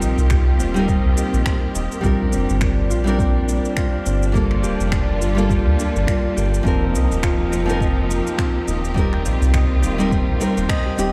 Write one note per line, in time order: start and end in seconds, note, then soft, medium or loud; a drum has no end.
0.00 0.15 A#1 medium
0.00 2.02 D#3 medium
0.00 0.71 G3 medium
0.00 4.31 A#3 medium
0.00 0.59 C4 medium
0.00 0.72 C4 medium
0.00 2.00 C4 medium
0.00 0.73 D#4 medium
0.00 0.88 D#4 medium
0.00 1.96 F4 medium
0.00 2.02 F4 medium
0.00 4.31 G4 medium
0.00 0.74 A#4 medium
0.00 shaker medium
0.18 0.61 C2 medium
0.18 shaker soft
0.30 1.16 G4 loud
0.30 finger snap medium
0.30 kick loud
0.30 shaker soft
0.60 0.99 D#1 medium
0.60 1.46 C4 loud
0.60 shaker medium
0.74 2.00 G3 medium
0.74 2.01 C4 medium
0.74 2.01 D#4 medium
0.74 shaker soft
0.79 2.02 A#4 medium
0.88 1.75 D#4 medium
0.88 kick loud
0.88 shaker soft
1.05 1.15 C2 medium
1.17 3.52 G4 medium
1.17 shaker medium
1.33 1.43 A#1 medium
1.33 shaker soft
1.46 2.32 C4 loud
1.46 finger snap loud
1.46 kick loud
1.46 shaker soft
1.75 1.88 D#1 medium
1.75 2.67 D#4 medium
1.75 shaker medium
1.92 shaker soft
2.01 2.35 A#1 medium
2.01 3.01 G3 medium
2.01 3.02 C4 medium
2.01 3.03 D4 medium
2.01 6.62 D4 medium
2.01 2.90 F4 medium
2.01 kick loud
2.01 shaker soft
2.06 3.04 A#4 medium
2.33 2.46 F1 loud
2.33 3.19 C4 loud
2.33 shaker medium
2.49 2.92 G1 loud
2.49 shaker soft
2.61 3.48 D4 medium
2.61 finger snap medium
2.61 kick loud
2.61 shaker soft
2.90 3.59 A#1 medium
2.90 3.76 F4 loud
2.90 shaker medium
3.04 4.30 G3 medium
3.04 4.31 C4 medium
3.04 4.32 D4 medium
3.04 shaker soft
3.09 4.33 A#4 medium
3.19 4.05 C4 loud
3.19 kick loud
3.19 shaker soft
3.48 4.92 D4 medium
3.48 shaker medium
3.65 shaker soft
3.77 4.34 F4 loud
3.77 finger snap loud
3.77 kick medium
3.77 shaker soft
4.06 4.65 G1 medium
4.06 6.65 C4 medium
4.06 shaker medium
4.23 shaker soft
4.32 5.32 G3 medium
4.32 6.63 G3 medium
4.32 5.33 A#3 medium
4.32 8.92 A#3 medium
4.32 5.20 F4 medium
4.32 6.63 F4 medium
4.32 5.34 F4 medium
4.32 6.63 A4 medium
4.32 kick medium
4.32 shaker soft
4.37 5.35 A4 medium
4.51 finger snap soft
4.63 4.77 D1 loud
4.63 5.49 G4 loud
4.63 shaker medium
4.80 5.22 F1 medium
4.80 shaker soft
4.92 5.78 D4 loud
4.92 finger snap medium
4.92 kick loud
4.92 shaker soft
5.21 5.61 G1 medium
5.21 6.07 F4 medium
5.21 shaker medium
5.35 6.61 G3 medium
5.35 6.62 A#3 medium
5.35 6.63 F4 medium
5.35 shaker soft
5.40 6.63 A4 medium
5.50 6.36 G4 loud
5.50 kick medium
5.50 shaker soft
5.67 5.76 D2 medium
5.78 7.00 D4 loud
5.78 shaker medium
5.96 6.05 G1 medium
5.96 shaker soft
6.07 7.23 F4 medium
6.07 finger snap medium
6.07 kick loud
6.07 shaker soft
6.36 6.60 G1 medium
6.36 8.72 G4 loud
6.36 shaker medium
6.54 shaker soft
6.63 6.96 F1 medium
6.63 7.63 F3 medium
6.63 8.93 F3 medium
6.63 11.12 C4 medium
6.63 7.64 C4 medium
6.63 7.51 C4 loud
6.63 8.93 D#4 medium
6.63 7.65 D#4 medium
6.63 11.12 G4 medium
6.63 kick loud
6.63 shaker soft
6.68 7.66 A#4 medium
6.94 7.08 C2 medium
6.94 7.80 D#4 medium
6.94 shaker medium
7.11 7.54 D#1 loud
7.11 shaker soft
7.23 8.09 F4 loud
7.23 finger snap medium
7.23 kick medium
7.23 shaker soft
7.52 8.21 F1 medium
7.52 8.38 C4 loud
7.52 shaker medium
7.66 8.92 F3 medium
7.66 8.93 C4 medium
7.66 8.93 D#4 medium
7.66 shaker soft
7.71 8.94 A#4 loud
7.80 8.67 D#4 medium
7.80 kick loud
7.80 shaker soft
8.10 10.62 F4 loud
8.10 shaker medium
8.27 shaker soft
8.38 9.25 C4 loud
8.38 finger snap medium
8.38 kick medium
8.38 shaker soft
8.67 9.27 D#1 medium
8.67 9.54 D#4 medium
8.67 shaker medium
8.85 shaker soft
8.94 11.12 D#3 medium
8.94 9.94 G3 medium
8.94 11.12 A#3 medium
8.94 9.95 C4 medium
8.94 9.96 D#4 medium
8.94 11.12 F4 medium
8.94 9.82 G4 medium
8.94 kick medium
8.94 shaker soft
8.99 9.97 A#4 medium
9.13 finger snap soft
9.25 9.38 A#1 loud
9.25 10.11 C4 loud
9.25 shaker medium
9.42 9.85 C2 loud
9.42 shaker soft
9.54 11.12 D#4 medium
9.54 finger snap medium
9.54 kick loud
9.54 shaker soft
9.82 10.23 D#1 medium
9.82 10.85 G4 loud
9.82 shaker medium
9.98 10.37 G3 medium
9.98 10.38 C4 medium
9.98 10.38 D#4 medium
9.98 10.39 A#4 medium
9.98 shaker soft
10.11 10.40 C4 loud
10.11 kick loud
10.11 shaker soft
10.29 10.38 A#1 medium
10.40 10.95 G3 medium
10.40 11.12 C4 medium
10.40 10.95 C4 medium
10.40 10.96 D#4 medium
10.40 10.96 A#4 medium
10.40 shaker medium
10.57 10.67 D#1 loud
10.57 11.12 C5 medium
10.57 shaker soft
10.69 10.98 D#5 medium
10.69 finger snap medium
10.69 kick loud
10.69 shaker soft
10.86 11.12 G4 medium
10.97 11.12 D#1 medium
10.97 11.12 G3 medium
10.97 11.12 C4 medium
10.97 11.12 D#4 medium
10.97 11.12 G4 medium
10.97 11.12 D#5 medium
10.97 shaker medium